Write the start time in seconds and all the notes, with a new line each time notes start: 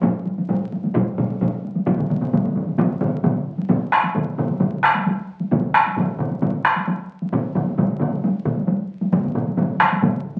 0.03 taiko, taiko low-mid, taiko high
0.26 taiko high
0.38 taiko high
0.49 taiko low-mid, taiko high
0.72 taiko high
0.84 taiko high
0.95 taiko, taiko low-mid, taiko high
1.18 taiko low-mid, taiko high
1.30 taiko high
1.41 taiko low-mid, taiko high
1.65 taiko high
1.76 taiko high
1.87 taiko, taiko low-mid, taiko mid, taiko high
1.98 taiko low-mid, taiko mid
2.10 taiko low-mid, taiko mid, taiko high
2.21 taiko low-mid, taiko mid
2.33 taiko low-mid, taiko mid, taiko high
2.45 taiko low-mid, taiko mid
2.56 taiko low-mid, taiko mid, taiko high
2.67 taiko high
2.78 taiko, taiko low-mid, taiko mid, taiko high
3.01 taiko low-mid, taiko mid, taiko high
3.24 taiko low-mid, taiko mid, taiko high
3.58 taiko high
3.69 taiko, taiko low-mid, taiko mid, taiko high
3.92 taiko rim
4.04 taiko high
4.15 taiko low-mid, taiko mid, taiko high
4.38 taiko low-mid, taiko mid
4.49 taiko high
4.60 taiko low-mid, taiko mid, taiko high
4.83 taiko rim
4.95 taiko high
5.06 taiko, taiko high
5.41 taiko high
5.51 taiko, taiko low-mid, taiko mid, taiko high
5.74 taiko rim
5.86 taiko high
5.97 taiko low-mid, taiko mid, taiko high
6.19 taiko low-mid, taiko mid
6.31 taiko high
6.42 taiko low-mid, taiko mid, taiko high
6.65 taiko rim
6.76 taiko high
6.87 taiko, taiko high
7.22 taiko high
7.32 taiko, taiko low-mid, taiko mid, taiko high
7.55 taiko low-mid, taiko mid
7.67 taiko high
7.78 taiko low-mid, taiko mid, taiko high
8.00 taiko low-mid, taiko mid
8.12 taiko high
8.24 taiko high
8.45 taiko low-mid, taiko mid
8.57 taiko high
8.68 taiko, taiko high
9.01 taiko high
9.12 taiko, taiko low-mid, taiko mid, taiko high
9.24 taiko low-mid, taiko mid
9.35 taiko low-mid, taiko mid
9.47 taiko high
9.57 taiko low-mid, taiko mid, taiko high
9.80 taiko rim, taiko high
9.92 taiko high
10.02 taiko low-mid, taiko mid, taiko high